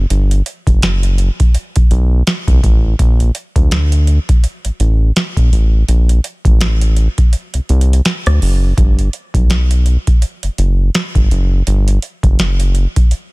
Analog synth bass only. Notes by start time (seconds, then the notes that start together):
0.10 G1
0.67 F#1
1.76 B1
1.91 B1
2.48 C2
2.64 A1
2.99 A#1
3.56 D2
4.65 A1
4.80 A1
5.37 A#1
5.52 A1
5.88 A#1
6.45 A1
7.54 C2
7.70 C2
8.27 D2
8.42 F#1
8.78 G1
9.34 B1
10.43 F#1
10.58 F#1
11.15 G1
11.31 F#1
11.67 G1
12.23 F#1